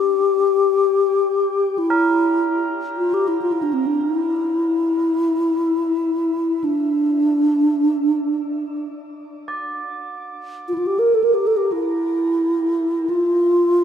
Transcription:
Already playing: bass flute G4, tubular bells G4
1.78 bass flute E4
1.90 tubular bells A#4
2.97 bass flute F4
3.14 bass flute G4
3.28 bass flute E4
3.41 bass flute F4
3.52 bass flute E4
3.62 bass flute D4
3.73 bass flute C4
3.86 bass flute D4
4.01 bass flute E4
6.64 bass flute D4
9.48 tubular bells D5
10.68 bass flute F4
10.74 bass flute E4
10.78 bass flute F4
10.86 bass flute G4
10.99 bass flute A#4
11.14 bass flute A4
11.24 bass flute A#4
11.34 bass flute G4
11.46 bass flute A4
11.57 bass flute G4
11.72 bass flute E4
13.09 bass flute F4

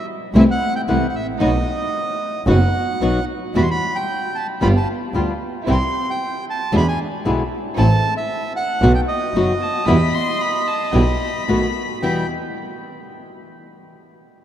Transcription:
0.34 double bass C2, nylon-string guitar C3 E3 A3 C4 E4, string section A3 C4 E4
0.39 bandoneon E5
0.51 bandoneon F#5
0.76 bandoneon G5
0.88 double bass C2, nylon-string guitar C3 E3 A3 C4 E4, string section A3 C4 E4, bandoneon F#5
1.09 bandoneon F#5
1.15 double bass A1, bandoneon E5
1.40 double bass B1, nylon-string guitar B2 F#3 B3 D#4 F#4, string section B3 D#4 F#4, bandoneon D#5
2.46 double bass F#1, nylon-string guitar B2 F#3 B3 D#4 F#4, string section B3 D#4 F#4, bandoneon F#5
3.01 double bass B1, nylon-string guitar B2 F#3 B3 D#4 F#4, string section B3 D#4 F#4
3.54 double bass E2, nylon-string guitar B2 E3 G3 B3 F#4, string section G3 E4 F#4, bandoneon B5
3.63 bandoneon C6
3.71 bandoneon B5
3.95 bandoneon G5
4.35 bandoneon A5
4.61 double bass G1, nylon-string guitar G3 B3 F4, string section B3 F4 G4, bandoneon B5
4.77 bandoneon A5
5.14 double bass D2, nylon-string guitar G3 B3 F4, string section B3 F4 G4
5.66 double bass C2, nylon-string guitar C3 E3 G3 C4 E4, string section C4 E4 G4
5.71 bandoneon C6
6.10 bandoneon G5
6.50 bandoneon A5
6.72 double bass E2, nylon-string guitar B2 D3 G#3 B3 E4, string section D4 E4 G#4
6.77 bandoneon B5
6.88 bandoneon G#5
7.25 double bass B1, nylon-string guitar B2 D3 G#3 B3 E4, string section D4 E4 G#4
7.76 double bass A1, nylon-string guitar E3 A3 C4 E4, string section C4 E4 A4, bandoneon A5
8.17 bandoneon E5
8.56 bandoneon F#5
8.81 double bass B1, nylon-string guitar B2 F#3 B3 D#4 F#4, string section B3 D#4 F#4
8.95 bandoneon G5
9.08 bandoneon D#5
9.33 double bass F#1, nylon-string guitar B2 F#3 B3 D#4 F#4, string section B3 D#4 F#4
9.60 violin A5
9.86 double bass E2, nylon-string guitar B2 E3 G3 B3 E4, string section B3 E4 G4, violin B5
10.14 violin C6
10.41 violin B5
10.67 violin A5
10.92 double bass B1, nylon-string guitar B2 E3 G3 B3 E4, string section B3 E4 G4, violin B5
11.47 double bass B1, nylon-string guitar B2 D#3 A3 B3 F#4, string section B3 D#4 A4
12.02 double bass E2, nylon-string guitar E2 B2 E3 G3 B3 E4, string section B3 E4 G4, bandoneon G5, violin B5

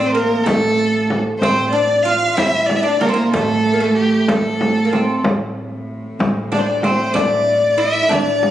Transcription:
Already playing: upright bass A1, cello section A2
0.00 oud C4
0.06 violin C5
0.13 oud A#3, violin A#4
0.43 upright bass A1, oud A3, violin A4, frame drum
1.10 frame drum
1.39 upright bass A1, cello section A2, oud C4, violin C5, frame drum
1.71 oud D4, violin D5
2.03 oud F4, violin F5
2.34 upright bass A1, oud E4, violin E5, frame drum
2.66 violin D5, frame drum
2.76 violin E5
2.81 oud D4, violin D5
3.00 oud A#3, violin A#4, frame drum
3.07 oud C4, violin A4
3.13 oud A#3, violin A#4
3.32 upright bass A1, oud A3, violin A4, frame drum
3.73 oud A#3
3.80 oud A3
3.95 violin G4
4.28 upright bass A1, oud A3, violin A4, frame drum
4.61 frame drum
4.85 oud A#3
4.93 oud C4, frame drum
5.23 upright bass A1, cello section A2, frame drum
6.19 upright bass A1, frame drum
6.52 oud D4, violin D5, frame drum
6.58 violin C5
6.66 violin D5
6.82 oud C4, violin C5, frame drum
7.14 upright bass A1, oud D4, violin D5, frame drum
7.78 oud E4, violin E5
8.03 oud E4
8.09 upright bass A1, oud D4, violin D5, frame drum
8.43 frame drum

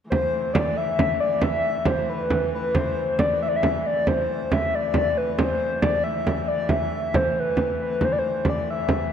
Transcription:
0.10 hurdy-gurdy A2 E3, soft synth lead C5, frame drum
0.54 soft synth lead D5, frame drum
0.77 soft synth lead E5
0.99 frame drum
1.20 soft synth lead D5, frame drum
1.42 soft synth lead E5, frame drum
1.85 soft synth lead C5, frame drum
2.09 soft synth lead B4
2.30 frame drum
2.55 soft synth lead B4
2.75 soft synth lead C5, frame drum
3.19 soft synth lead D5, frame drum
3.42 soft synth lead E5
3.48 soft synth lead D5
3.56 soft synth lead E5
3.63 frame drum
3.85 soft synth lead D5, frame drum
4.07 soft synth lead C5, frame drum
4.30 frame drum
4.52 soft synth lead E5, frame drum
4.73 soft synth lead D5, frame drum
4.94 frame drum
5.17 soft synth lead B4
5.38 hurdy-gurdy A2 E3, soft synth lead C5, frame drum
5.82 soft synth lead D5, frame drum
6.04 soft synth lead E5
6.27 frame drum
6.48 soft synth lead D5, frame drum
6.69 soft synth lead E5, frame drum
7.14 soft synth lead C5, frame drum
7.31 soft synth lead C5
7.39 soft synth lead B4
7.57 frame drum
7.80 soft synth lead B4, frame drum
8.01 soft synth lead C5, frame drum
8.12 soft synth lead D5
8.18 soft synth lead C5
8.45 frame drum
8.49 soft synth lead D5
8.70 soft synth lead E5
8.89 frame drum

